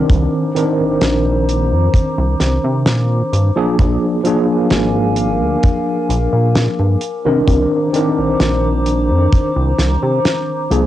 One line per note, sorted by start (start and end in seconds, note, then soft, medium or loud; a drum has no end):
0.00 0.50 D#3 medium
0.00 0.51 C4 medium
0.00 0.51 D4 medium
0.00 0.51 A#4 loud
0.00 3.75 C5 medium
0.00 3.75 A#5 medium
0.00 6.98 D6 medium
0.09 0.28 C2 loud
0.09 kick loud
0.09 closed hi-hat medium
0.54 3.50 D#3 medium
0.54 3.51 C4 medium
0.54 3.51 D4 medium
0.54 3.52 A#4 medium
0.54 closed hi-hat medium
0.80 0.97 A#1 soft
1.01 1.73 A#1 medium
1.01 snare loud
1.01 closed hi-hat medium
1.49 closed hi-hat medium
1.72 1.89 F2 loud
1.94 kick loud
1.94 closed hi-hat medium
2.18 2.35 C2 medium
2.40 2.59 C2 medium
2.40 snare medium
2.40 closed hi-hat medium
2.64 2.88 C3 loud
2.86 3.22 A#2 loud
2.86 snare loud
2.86 closed hi-hat medium
3.33 3.51 G2 medium
3.33 closed hi-hat medium
3.56 4.19 F3 medium
3.56 4.20 A#3 medium
3.56 4.20 D4 medium
3.56 4.20 G#4 medium
3.79 3.97 A#1 loud
3.79 6.99 A#4 medium
3.79 6.99 F5 medium
3.79 6.99 G#5 medium
3.79 kick loud
3.79 closed hi-hat medium
4.24 6.99 F3 medium
4.24 6.99 A#3 medium
4.24 7.00 D4 medium
4.24 7.00 G#4 medium
4.24 closed hi-hat medium
4.70 5.42 G#1 loud
4.70 snare loud
4.70 closed hi-hat medium
5.16 closed hi-hat medium
5.41 5.58 D2 loud
5.63 kick loud
5.63 closed hi-hat medium
6.09 6.28 A#1 medium
6.09 closed hi-hat medium
6.33 6.68 A#2 medium
6.55 snare loud
6.55 closed hi-hat medium
6.79 6.97 G2 medium
7.01 10.87 C5 medium
7.01 10.87 A#5 medium
7.01 10.87 D6 medium
7.01 closed hi-hat medium
7.25 7.43 C2 medium
7.25 7.89 D#3 medium
7.25 7.89 C4 medium
7.25 7.89 D4 medium
7.25 7.89 A#4 medium
7.48 7.66 C2 medium
7.48 kick loud
7.48 closed hi-hat medium
7.93 10.66 D#3 medium
7.93 10.66 C4 medium
7.93 10.67 D4 medium
7.93 10.68 A#4 loud
7.93 closed hi-hat medium
8.18 8.36 A#1 soft
8.40 9.12 A#1 medium
8.40 snare loud
8.40 closed hi-hat medium
8.86 closed hi-hat medium
9.10 9.27 F2 loud
9.32 kick loud
9.32 closed hi-hat medium
9.56 9.74 C2 medium
9.78 9.97 C2 medium
9.78 snare medium
9.78 closed hi-hat medium
10.03 10.20 C3 medium
10.25 snare loud
10.25 closed hi-hat medium
10.70 10.87 C2 medium
10.70 10.87 F3 medium
10.70 10.87 A#3 medium
10.70 10.87 D4 medium
10.70 10.87 G#4 medium
10.70 closed hi-hat medium